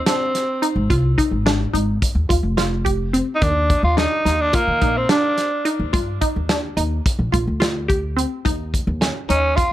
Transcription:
0.06 C4 D4, snare, closed hi-hat
0.35 snare, closed hi-hat
0.62 D#4, closed hi-hat
0.76 G#1
0.90 C2 F4, kick, closed hi-hat
1.18 D#4, kick, closed hi-hat
1.31 G#1
1.46 D4, snare, closed hi-hat
1.74 G#1 D#4, closed hi-hat
2.02 kick, closed hi-hat
2.15 D#2
2.29 D#2 F4, kick, closed hi-hat
2.43 F1
2.57 F4, snare, closed hi-hat
2.85 G4, kick, closed hi-hat
3.13 C4, closed hi-hat
3.35 D#4
3.42 D#2 D#3 D4, kick, closed hi-hat
3.70 kick, closed hi-hat
3.83 D#2 F4
3.97 D4 D#4, snare, closed hi-hat
4.25 D#2 D#4, snare, closed hi-hat
4.41 D4
4.53 A#3 F4, kick, closed hi-hat
4.68 D#3
4.82 A#1 D#4, kick, closed hi-hat
4.97 C4
5.09 D4, snare, closed hi-hat
5.38 snare, closed hi-hat
5.65 D#4, closed hi-hat
5.80 D#2
5.93 G2 F4, kick, closed hi-hat
6.21 D#4, kick, closed hi-hat
6.36 D#2
6.49 D4, snare, closed hi-hat
6.77 D#2 D#4, closed hi-hat
7.06 kick, closed hi-hat
7.19 A#1
7.32 A#1 F4, kick, closed hi-hat
7.47 D2
7.60 F4, snare, closed hi-hat
7.88 G4, kick, closed hi-hat
8.17 C4, closed hi-hat
8.45 D#2 D#4, kick, closed hi-hat
8.74 kick, closed hi-hat
8.87 D#2
9.01 C#4, snare, closed hi-hat
9.29 D#2 C#4 D#4, closed hi-hat
9.56 F4, kick, closed hi-hat

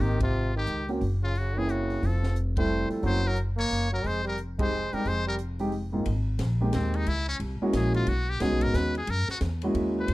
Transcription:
0.00 G#1 D#3 A#3 C4 D#4 G4
0.20 C3 F4, kick, ride
0.56 D#3 G4
0.66 C#2, closed hi-hat
0.89 A#3 C4 C#4 F#4, open hi-hat
1.01 F#1, kick, open hi-hat
1.23 C#3 F4
1.35 C#3 F#4, open hi-hat
1.56 E3 A#3 C4 C#4 E4 G#4
1.69 C#3 F#4, closed hi-hat
1.90 open hi-hat
2.02 F1 F3 A4, kick, open hi-hat
2.23 snare
2.36 closed hi-hat
2.57 G3 A3 C4 E4 C5, kick, ride
2.89 F3 A4, muted upright bass stroke, open hi-hat
3.03 F#1 F#3 A#3 C4 C#4 E4 C5, kick, open hi-hat
3.24 F#3 A#4
3.36 closed hi-hat
3.57 A#3 C#5, open hi-hat
3.70 F#1, open hi-hat
3.92 F#3 A#4
4.04 F1 G#3 C5, kick, open hi-hat
4.24 G3 A#4
4.38 closed hi-hat
4.59 G#3 C4 D#4 G4 C5, kick, ride
4.93 G3 G#3 C4 D#4 G4 A#4, muted upright bass stroke, open hi-hat
5.05 F1 G#3 C5, kick, open hi-hat
5.27 G3 A#4
5.39 closed hi-hat
5.59 G#3 C4 D#4 G4, open hi-hat
5.72 open hi-hat
5.92 G#2 A#3 C4 D#4 F4
6.06 G#1, kick, ride
6.39 A#1, kick, snare, hi-hat pedal, ride
6.61 G#3 A#3 C4 D#4 G4
6.73 D#2 C4, kick, snare, hi-hat pedal, ride
6.94 D#4, ride
7.06 C#2 E4, kick, ride
7.29 C#4
7.40 C2, kick, ride
7.61 G#3 A#3 C#4 E4 F#4, muted upright bass stroke
7.73 A#1 G#4, kick, snare, hi-hat pedal, ride
7.94 F4, ride
8.07 B1 F#4, kick, ride
8.30 G4
8.40 C#2 G#3 B3 C#4 D#4 F#4 G#4, kick, snare, hi-hat pedal, ride
8.52 B1
8.61 G#1 A#4, ride
8.74 D#2 B4, kick, snare, hi-hat pedal
8.95 G#4, ride
9.07 F#2 A#4, kick, ride
9.27 F#4, muted upright bass stroke, snare
9.41 E2, kick, snare, hi-hat pedal, ride
9.62 G#3 A#3 C#4 E4 F#4, ride
9.74 D#2, kick, ride
10.00 C5
10.08 F2, kick, ride

